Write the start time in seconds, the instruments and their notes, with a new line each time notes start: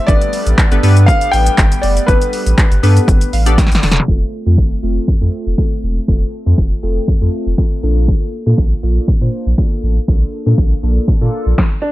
Already playing: analog synth pad A3
0.07 sub bass G1, analog synth pad G3 B3, synth keys B3 D4 G4 A4 B4, grand piano D5, kick, shaker
0.22 closed hi-hat, shaker
0.33 open hi-hat, shaker
0.46 sub bass A1, closed hi-hat, shaker
0.58 kick, clap, shaker
0.71 sub bass G1, synth keys B3 D4 G4 A4 B4, closed hi-hat, shaker
0.83 sub bass G2, synth keys B3 D4 G4 A4 B4, open hi-hat, shaker
0.97 closed hi-hat, shaker
1.06 sub bass G1, grand piano F5, kick, shaker
1.21 closed hi-hat, shaker
1.32 sub bass A1, grand piano G5, open hi-hat, shaker
1.46 closed hi-hat, shaker
1.58 sub bass G1, kick, clap, shaker
1.72 closed hi-hat, shaker
1.82 sub bass F#1, grand piano D5, open hi-hat, shaker
1.97 closed hi-hat, shaker
2.07 sub bass G1, synth keys B3 D4 G4 A4 B4, grand piano B4, kick, shaker
2.22 closed hi-hat, shaker
2.33 open hi-hat, shaker
2.46 sub bass A1, closed hi-hat, shaker
2.58 kick, clap, shaker
2.71 sub bass G1, closed hi-hat, shaker
2.83 sub bass G2, synth keys B3 D4 G4 A4 B4, open hi-hat, shaker
2.97 closed hi-hat, shaker
3.08 sub bass G1, kick, shaker
3.21 closed hi-hat, shaker
3.33 sub bass A1, synth keys F5, open hi-hat, shaker
3.46 synth keys B3 D4 G4 A4 D5, closed hi-hat, shaker
3.58 synth keys G5, kick, snare, shaker
3.67 snare
3.71 sub bass G1, snare, closed hi-hat, shaker
3.83 sub bass E1, synth keys A5, snare, open hi-hat, shaker
3.92 snare
3.97 snare, closed hi-hat, shaker
4.08 sub bass F1, synth keys A3 C4 F4 A4, kick
4.46 sub bass F2, synth keys A3 C4 F4 A4
4.58 sub bass F1, finger snap, kick
4.83 sub bass F1, synth keys A3 C4 F4 A4
5.08 sub bass F2, kick
5.21 sub bass F2, synth keys A3 C4 F4 A4
5.47 sub bass F1
5.58 synth keys A3 C4 F4 A4, finger snap, kick
5.83 sub bass E1
6.08 sub bass F1, synth keys A3 C4 F4 A4, kick
6.46 sub bass F2, synth keys A3 C4 F4 A4
6.58 sub bass F1, finger snap, kick
6.83 sub bass F1, synth keys A3 C4 F4 A4 G5
7.08 sub bass F2, synth keys F5, kick
7.21 sub bass F2, synth keys A3 C4 F4 A4
7.33 synth keys A5
7.46 sub bass F1
7.58 synth keys A3 C4 F4 A4 A#5, finger snap, kick
7.83 sub bass A#1, synth keys A#3 D4 F4 A4
8.08 kick
8.46 sub bass A#2, synth keys A#3 D4 F4 A4
8.58 sub bass A#1, finger snap, kick
8.83 sub bass A#1, synth keys A#3 D4 F4 A4
9.08 sub bass A#2, kick
9.21 sub bass A#2, synth keys A#3 D4 F4 C5
9.46 sub bass A#1
9.58 synth keys A#3 D4 F4 A4, finger snap, kick
9.83 sub bass A1
10.08 sub bass A#1, synth keys A#3 D4 F4 A4, kick
10.46 sub bass A#2, synth keys A#3 D4 F4 A4
10.58 sub bass A#1, finger snap, kick
10.83 sub bass A#1, synth keys A#3 D4 F4 A4
11.08 sub bass A#2, kick
11.21 sub bass A#2, synth keys A#3 D4 F4 A4
11.46 sub bass A#1
11.58 kick, snare
11.82 grand piano D4